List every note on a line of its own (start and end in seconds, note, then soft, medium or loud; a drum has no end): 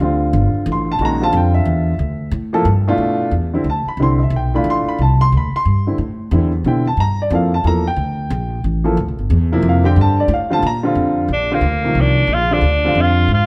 0.00 0.32 D2 loud
0.00 0.93 D3 medium
0.00 0.93 G3 medium
0.00 0.94 C4 medium
0.00 0.94 F4 medium
0.33 0.53 G1 loud
0.54 muted upright bass stroke soft
0.66 0.98 A1 loud
0.72 0.90 C6 medium
0.92 1.02 A5 loud
0.99 1.32 A#1 medium
0.99 1.19 D#3 medium
0.99 1.20 G#3 medium
0.99 1.20 C#4 medium
0.99 1.20 F#4 medium
1.05 1.23 A#5 loud
1.21 1.92 D3 medium
1.21 1.93 G3 medium
1.21 1.93 C4 medium
1.21 1.93 F4 medium
1.21 1.34 A5 loud
1.33 1.65 F2 loud
1.37 1.56 G5 medium
1.54 2.29 E5 medium
1.65 1.98 E2 loud
1.99 2.31 D2 medium
2.31 2.64 A2 loud
2.53 2.65 F3 medium
2.53 2.65 A#3 medium
2.53 2.65 E4 medium
2.53 2.65 A4 loud
2.65 2.97 G2 loud
2.87 3.30 B2 medium
2.87 3.31 A3 medium
2.87 3.31 D4 medium
2.87 3.30 E4 medium
2.87 3.31 F4 loud
2.98 3.31 A2 medium
3.31 3.64 E2 medium
3.53 3.65 D3 medium
3.53 3.65 G3 medium
3.53 3.65 C4 medium
3.53 3.65 E4 medium
3.64 3.84 D2 medium
3.70 3.88 A5 medium
3.86 4.00 B5 medium
3.86 muted upright bass stroke soft
3.97 4.30 C2 medium
3.97 4.18 D3 medium
3.97 4.18 G3 medium
3.97 4.19 C4 medium
3.97 4.19 E4 medium
4.03 4.21 C6 loud
4.23 4.33 E5 medium
4.30 4.63 B1 loud
4.36 4.55 G5 medium
4.54 4.97 A3 medium
4.54 4.97 D4 medium
4.54 4.97 E4 medium
4.54 4.98 F4 medium
4.54 4.66 B5 medium
4.64 4.84 A1 medium
4.70 4.88 C6 loud
4.85 4.99 B5 loud
4.85 muted upright bass stroke soft
4.99 5.31 C2 medium
4.99 5.21 A5 medium
5.21 5.32 C6 loud
5.32 5.52 D2 medium
5.37 5.55 B5 medium
5.53 5.97 C6 loud
5.53 muted upright bass stroke soft
5.65 5.97 G2 medium
5.87 5.98 D3 medium
5.87 5.98 G3 medium
5.87 5.98 C4 medium
5.87 5.98 E4 medium
5.98 6.30 A2 medium
6.31 6.64 E2 loud
6.31 6.51 D3 medium
6.31 6.51 G3 medium
6.31 6.51 C4 medium
6.31 6.51 E4 medium
6.64 6.96 B2 medium
6.64 6.84 D3 medium
6.64 6.84 G3 medium
6.64 6.84 C4 medium
6.64 6.85 E4 medium
6.64 6.86 G5 medium
6.87 6.98 A5 medium
6.97 7.30 G2 medium
6.97 7.19 A#5 loud
7.22 7.32 D5 medium
7.30 7.63 F2 loud
7.30 7.50 F3 medium
7.30 7.50 A#3 medium
7.30 7.50 E4 medium
7.30 7.51 A4 medium
7.35 7.53 F5 medium
7.54 7.65 A5 medium
7.64 7.96 E2 medium
7.64 7.83 F3 medium
7.64 7.83 A#3 medium
7.64 7.84 E4 medium
7.64 7.84 A4 medium
7.64 7.86 A#5 loud
7.87 8.61 G5 loud
7.96 8.29 D2 medium
8.30 8.63 A#1 loud
8.64 8.96 A1 medium
8.84 8.96 F3 medium
8.84 8.96 A#3 medium
8.84 8.96 E4 medium
8.84 8.96 A4 medium
8.97 9.10 D2 medium
9.08 9.18 A#1 medium
9.19 9.29 G1 medium
9.30 9.62 E2 loud
9.52 9.83 C3 medium
9.52 9.83 F3 medium
9.52 9.83 A#3 medium
9.52 9.83 E4 loud
9.62 9.95 F2 loud
9.69 9.86 F5 medium
9.84 10.27 D3 medium
9.84 10.27 G3 medium
9.84 10.27 C4 medium
9.84 10.28 G4 loud
9.84 9.97 G5 loud
9.96 10.28 G2 medium
10.01 10.19 A5 loud
10.20 10.31 D5 medium
10.28 10.61 A2 loud
10.34 10.52 F5 medium
10.50 10.62 D3 medium
10.50 10.62 G3 medium
10.50 10.62 C4 medium
10.50 10.62 F4 medium
10.50 10.64 A5 loud
10.63 10.95 A#2 loud
10.67 10.78 A#5 loud
10.83 11.27 D3 medium
10.83 11.27 G3 medium
10.83 11.27 C4 medium
10.83 11.28 F4 medium
10.95 11.28 F2 medium
11.28 11.60 A#1 medium
11.33 11.56 D4 medium
11.51 11.62 D3 medium
11.51 11.62 G3 medium
11.51 12.02 A#3 medium
11.51 11.62 C4 medium
11.51 11.62 F4 medium
11.61 11.94 D2 medium
11.84 12.27 C3 medium
11.84 12.28 D#3 medium
11.84 12.27 F3 medium
11.84 12.27 A#3 medium
11.95 12.27 C2 medium
12.01 12.36 D4 medium
12.27 12.61 A#1 loud
12.34 12.55 F4 medium
12.51 12.62 D3 medium
12.51 12.62 G3 medium
12.51 12.62 C4 medium
12.51 13.03 D4 medium
12.51 12.62 F4 medium
12.61 12.94 D2 medium
12.85 13.27 D3 medium
12.85 13.28 G3 medium
12.85 13.28 C4 medium
12.85 13.28 F4 medium
12.95 13.28 F2 medium
13.02 13.34 F4 loud
13.28 13.46 G#2 medium
13.34 13.46 F4 medium